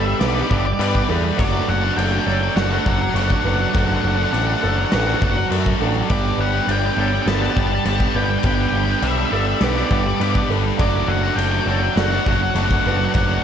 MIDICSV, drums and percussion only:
0, 0, Header, 1, 2, 480
1, 0, Start_track
1, 0, Key_signature, 1, "major"
1, 0, Tempo, 588235
1, 1128, Time_signature, 4, 2, 24, 8
1, 10965, End_track
2, 0, Start_track
2, 0, Title_t, "Drums"
2, 170, Note_on_c, 9, 38, 114
2, 170, Note_on_c, 9, 49, 74
2, 251, Note_off_c, 9, 38, 0
2, 251, Note_off_c, 9, 49, 0
2, 301, Note_on_c, 9, 38, 31
2, 382, Note_off_c, 9, 38, 0
2, 415, Note_on_c, 9, 36, 95
2, 497, Note_off_c, 9, 36, 0
2, 659, Note_on_c, 9, 49, 72
2, 741, Note_off_c, 9, 49, 0
2, 775, Note_on_c, 9, 36, 88
2, 857, Note_off_c, 9, 36, 0
2, 1135, Note_on_c, 9, 36, 117
2, 1143, Note_on_c, 9, 49, 71
2, 1217, Note_off_c, 9, 36, 0
2, 1224, Note_off_c, 9, 49, 0
2, 1620, Note_on_c, 9, 49, 71
2, 1701, Note_off_c, 9, 49, 0
2, 2097, Note_on_c, 9, 38, 120
2, 2097, Note_on_c, 9, 49, 72
2, 2179, Note_off_c, 9, 38, 0
2, 2179, Note_off_c, 9, 49, 0
2, 2335, Note_on_c, 9, 36, 100
2, 2417, Note_off_c, 9, 36, 0
2, 2578, Note_on_c, 9, 49, 67
2, 2659, Note_off_c, 9, 49, 0
2, 2695, Note_on_c, 9, 36, 87
2, 2776, Note_off_c, 9, 36, 0
2, 3057, Note_on_c, 9, 36, 115
2, 3057, Note_on_c, 9, 49, 62
2, 3138, Note_off_c, 9, 49, 0
2, 3139, Note_off_c, 9, 36, 0
2, 3542, Note_on_c, 9, 49, 67
2, 3624, Note_off_c, 9, 49, 0
2, 4013, Note_on_c, 9, 38, 119
2, 4013, Note_on_c, 9, 49, 71
2, 4095, Note_off_c, 9, 38, 0
2, 4095, Note_off_c, 9, 49, 0
2, 4140, Note_on_c, 9, 38, 33
2, 4221, Note_off_c, 9, 38, 0
2, 4259, Note_on_c, 9, 36, 96
2, 4341, Note_off_c, 9, 36, 0
2, 4501, Note_on_c, 9, 49, 72
2, 4583, Note_off_c, 9, 49, 0
2, 4620, Note_on_c, 9, 36, 89
2, 4702, Note_off_c, 9, 36, 0
2, 4974, Note_on_c, 9, 49, 67
2, 4979, Note_on_c, 9, 36, 114
2, 5055, Note_off_c, 9, 49, 0
2, 5060, Note_off_c, 9, 36, 0
2, 5457, Note_on_c, 9, 49, 69
2, 5539, Note_off_c, 9, 49, 0
2, 5937, Note_on_c, 9, 38, 115
2, 5937, Note_on_c, 9, 49, 71
2, 6018, Note_off_c, 9, 38, 0
2, 6018, Note_off_c, 9, 49, 0
2, 6063, Note_on_c, 9, 38, 32
2, 6145, Note_off_c, 9, 38, 0
2, 6174, Note_on_c, 9, 36, 100
2, 6256, Note_off_c, 9, 36, 0
2, 6408, Note_on_c, 9, 49, 72
2, 6490, Note_off_c, 9, 49, 0
2, 6529, Note_on_c, 9, 36, 92
2, 6611, Note_off_c, 9, 36, 0
2, 6878, Note_on_c, 9, 49, 62
2, 6887, Note_on_c, 9, 36, 112
2, 6960, Note_off_c, 9, 49, 0
2, 6969, Note_off_c, 9, 36, 0
2, 7363, Note_on_c, 9, 49, 63
2, 7445, Note_off_c, 9, 49, 0
2, 7840, Note_on_c, 9, 38, 121
2, 7840, Note_on_c, 9, 49, 68
2, 7922, Note_off_c, 9, 38, 0
2, 7922, Note_off_c, 9, 49, 0
2, 7966, Note_on_c, 9, 38, 31
2, 8047, Note_off_c, 9, 38, 0
2, 8085, Note_on_c, 9, 36, 101
2, 8167, Note_off_c, 9, 36, 0
2, 8332, Note_on_c, 9, 49, 67
2, 8414, Note_off_c, 9, 49, 0
2, 8447, Note_on_c, 9, 36, 90
2, 8529, Note_off_c, 9, 36, 0
2, 8808, Note_on_c, 9, 36, 118
2, 8809, Note_on_c, 9, 49, 70
2, 8890, Note_off_c, 9, 36, 0
2, 8890, Note_off_c, 9, 49, 0
2, 9290, Note_on_c, 9, 49, 68
2, 9372, Note_off_c, 9, 49, 0
2, 9770, Note_on_c, 9, 38, 125
2, 9770, Note_on_c, 9, 49, 71
2, 9852, Note_off_c, 9, 38, 0
2, 9852, Note_off_c, 9, 49, 0
2, 9892, Note_on_c, 9, 38, 31
2, 9974, Note_off_c, 9, 38, 0
2, 10008, Note_on_c, 9, 36, 97
2, 10089, Note_off_c, 9, 36, 0
2, 10244, Note_on_c, 9, 49, 67
2, 10326, Note_off_c, 9, 49, 0
2, 10369, Note_on_c, 9, 36, 90
2, 10450, Note_off_c, 9, 36, 0
2, 10719, Note_on_c, 9, 49, 63
2, 10730, Note_on_c, 9, 36, 113
2, 10801, Note_off_c, 9, 49, 0
2, 10811, Note_off_c, 9, 36, 0
2, 10965, End_track
0, 0, End_of_file